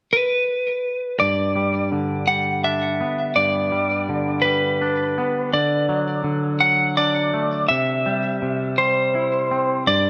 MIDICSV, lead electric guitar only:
0, 0, Header, 1, 2, 480
1, 0, Start_track
1, 0, Key_signature, 1, "major"
1, 0, Tempo, 721587
1, 807, Time_signature, 6, 3, 24, 8
1, 6718, End_track
2, 0, Start_track
2, 0, Title_t, "Lead electric guitar"
2, 0, Program_c, 0, 29
2, 85, Note_on_c, 0, 71, 40
2, 793, Note_off_c, 0, 71, 0
2, 796, Note_on_c, 0, 74, 48
2, 1255, Note_off_c, 0, 74, 0
2, 1514, Note_on_c, 0, 78, 50
2, 1755, Note_off_c, 0, 78, 0
2, 1758, Note_on_c, 0, 76, 51
2, 2216, Note_off_c, 0, 76, 0
2, 2234, Note_on_c, 0, 74, 49
2, 2938, Note_on_c, 0, 71, 42
2, 2982, Note_off_c, 0, 74, 0
2, 3679, Note_off_c, 0, 71, 0
2, 3682, Note_on_c, 0, 74, 39
2, 4137, Note_off_c, 0, 74, 0
2, 4394, Note_on_c, 0, 78, 53
2, 4622, Note_off_c, 0, 78, 0
2, 4638, Note_on_c, 0, 74, 51
2, 5095, Note_off_c, 0, 74, 0
2, 5112, Note_on_c, 0, 76, 52
2, 5840, Note_on_c, 0, 72, 44
2, 5860, Note_off_c, 0, 76, 0
2, 6536, Note_off_c, 0, 72, 0
2, 6568, Note_on_c, 0, 74, 42
2, 6718, Note_off_c, 0, 74, 0
2, 6718, End_track
0, 0, End_of_file